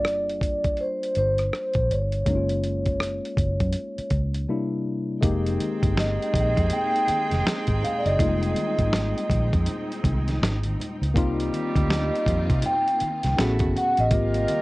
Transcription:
Already playing: G1 G3 A#3 D4 F4 G#4 D5
0.05 cross-stick, closed hi-hat
0.30 closed hi-hat
0.41 kick, closed hi-hat
0.64 kick, closed hi-hat
0.77 C5, closed hi-hat
1.03 closed hi-hat
1.15 G1 C5, closed hi-hat
1.38 cross-stick, closed hi-hat
1.53 cross-stick, closed hi-hat
1.74 A#1, kick, closed hi-hat
1.91 G1 C#5, closed hi-hat
2.12 closed hi-hat
2.26 F#1 G#3 A#3 C#4 D#4, kick, closed hi-hat
2.36 F4
2.49 closed hi-hat
2.64 closed hi-hat
2.86 kick, closed hi-hat
3.00 cross-stick, closed hi-hat
3.25 closed hi-hat
3.37 F#1, kick, closed hi-hat
3.60 F#2, kick, closed hi-hat
3.73 closed hi-hat
3.98 muted fingered electric bass stroke, closed hi-hat
4.10 C#2, kick, closed hi-hat
4.34 closed hi-hat
4.48 C3 G3 A#3 D4 E4
5.21 F1 G#3 A#3 C4 D#4 G4 G#4 G5, kick, closed hi-hat
5.46 closed hi-hat
5.60 closed hi-hat, muted conga, high conga
5.83 G1, kick, closed hi-hat
5.97 D#5, snare, closed hi-hat, muted conga
6.22 closed hi-hat
6.34 A#1, kick, closed hi-hat, muted conga, high conga, low conga
6.57 F2, kick, closed hi-hat
6.70 G5, closed hi-hat, muted conga, low conga
6.96 closed hi-hat
7.08 muted fingered electric bass stroke, closed hi-hat, muted conga, high conga
7.31 F1, snare, closed hi-hat, high conga
7.46 snare, closed hi-hat, muted conga
7.67 G#1, kick, closed hi-hat, high conga
7.83 F5, closed hi-hat, low conga
7.98 D5
8.05 F#1 D#5, closed hi-hat
8.18 F1 G3 A#3 C4 D#4 F4, kick, closed hi-hat
8.24 G#3
8.43 closed hi-hat
8.56 closed hi-hat, muted conga, high conga
8.79 G#1, kick, closed hi-hat
8.92 snare, closed hi-hat, muted conga
9.18 closed hi-hat
9.30 A#1, kick, closed hi-hat, high conga, low conga
9.53 F2, kick, closed hi-hat
9.66 closed hi-hat, muted conga, low conga
9.92 closed hi-hat
10.04 C2, kick, closed hi-hat, muted conga, high conga
10.27 snare, closed hi-hat, high conga
10.42 G#1, snare, closed hi-hat
10.64 closed hi-hat, high conga
10.80 closed hi-hat, muted conga, low conga
11.02 C#2, closed hi-hat
11.14 C2 G3 A#3 C4 D#4 F4 G4, kick, closed hi-hat
11.40 closed hi-hat
11.53 closed hi-hat, muted conga, high conga
11.76 D2, kick, closed hi-hat
11.90 D#5, snare, closed hi-hat
12.15 closed hi-hat
12.26 F2, kick, closed hi-hat, muted conga, high conga, low conga
12.50 C3, kick, closed hi-hat
12.62 G5, closed hi-hat, low conga
12.88 closed hi-hat
13.00 muted fingered electric bass stroke, closed hi-hat, high conga
13.23 C2, snare, closed hi-hat, high conga
13.37 A1 C#3 A3 B3 C#4 E4 F#4 G#4 A4, snare, closed hi-hat, muted conga
13.59 F#1, kick, closed hi-hat, high conga
13.76 F#5, closed hi-hat, low conga
13.97 A1 D#5, closed hi-hat
14.10 G#1 C3 G3 A#3 C4 F4 G4 A#4, kick, closed hi-hat, muted conga
14.34 closed hi-hat
14.48 closed hi-hat, muted conga, high conga

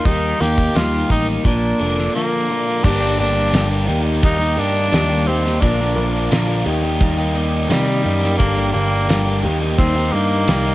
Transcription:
Already playing: A#3 G4 A#4 D#5 A#5
0.05 D#2 D#3 G3 A#3 D#4 G4, kick, closed hi-hat, shaker
0.40 D#2 A#3 D#4 G4, snare, closed hi-hat, shaker
0.58 kick
0.75 D#2 D#3 G3 A#3 D#4 F4 G4, snare, closed hi-hat, shaker
1.09 A1 D#4, kick, closed hi-hat, shaker
1.44 A#1 A#2 F3 A#3 D4 F4 A#4 D5, kick, closed hi-hat, shaker
1.79 F1 D3 F3 A#3 D4 A#4, closed hi-hat, shaker
1.98 snare
2.14 A#2 D3 F3 A#3 D4 A#4
2.49 F3 A#3 D4 F4 A#4
2.83 G1 G2 D3 G3 A#3 D4 G4 D5 A#5, kick, crash, shaker
2.99 G3 A#3 D4 G4
3.18 G1 G3 A#3 D4 G4, shaker
3.51 G1 G2 D3 G3 A#3 D4 G4, snare, ride bell, shaker
3.69 G3 A#3 D4 G4
3.85 D#2 D#3 G3 A#3 D#4 G4 G5, shaker
4.03 A#3 D#4 G4
4.22 D#2 G3 A#3 D#4 G4, kick, ride bell, shaker
4.38 A#3 D#4 G4
4.56 G2 G3 A#3 D4 D#4 G4, shaker
4.75 shaker
4.91 D#2 D#3 G3 A#3 D#4 G4, snare, ride bell, shaker
5.09 A#3 D#4 G4
5.27 G3 A#3 C4 D#4 G4, shaker
5.43 A#3 D#4 G4, snare, shaker
5.60 A#1 A#2 D3 F3 A#3 D4 A#4 D5 F5 D6, kick, ride bell, shaker
5.80 F3 A#3 D4 A#4
5.96 A#1 F3 A#3 D4 A#4, shaker
6.31 A#1 A#2 D3 F3 A#3 D4 A#4, snare, ride bell, shaker
6.47 F3 A#3 D4 A#4
6.66 D#2 D#3 G3 A#3 D#4 G4 D#5 G5 D#6, shaker
6.83 A#3 D#4 G4
7.00 D#2 G3 A#3 D#4 G4, kick, ride bell, shaker
7.17 A#3 D#4 G4
7.34 G3 A#3 D#4 G4, shaker
7.53 shaker
7.69 C3 D#3 G3 A#3 D#4 G4, snare, ride bell, shaker
7.86 A#3 D#4 G4
8.03 F#2 G3 A#3 D#4 G4, shaker
8.21 A#3 D#4 G4, snare, shaker
8.37 G1 G2 D3 G3 A#3 D4 G4 D5 D6, kick, ride bell, shaker
8.56 G3 A#3 D4 G4
8.72 G1 G3 A#3 D4 G4, shaker
9.08 G1 G2 D3 G3 A#3 D4 G4, snare, ride bell, shaker
9.25 G3 A#3 D4 G4
9.42 D#2 D#3 G3 A#3 D#4 G4 D#5 D#6
9.60 A#3 D#4 G4
9.78 D#2 G3 A#3 C4 D#4 G4, kick, ride bell, shaker
9.96 A#3 D#4 G4
10.12 G2 G3 A#3 D#4 G4, shaker
10.29 shaker
10.47 C2 D#3 G3 A#3 D#4 G4, snare, ride bell, shaker
10.65 A#3 D#4 G4

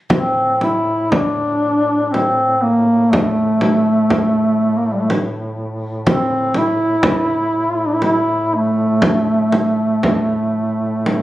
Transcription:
0.09 A2 C4, frame drum
0.61 E4, frame drum
1.12 D4, frame drum
2.07 D4
2.12 C4, frame drum
2.62 A#3
3.11 A3, frame drum
3.61 frame drum
4.10 frame drum
4.77 A#3
4.86 A3
4.92 G3
5.01 A3
5.10 frame drum
6.07 C4, frame drum
6.54 E4, frame drum
7.03 frame drum
7.70 F4
7.77 E4
7.87 D4
7.94 E4
8.02 E4, frame drum
8.55 A3
9.02 frame drum
9.52 frame drum
10.03 frame drum
11.06 frame drum

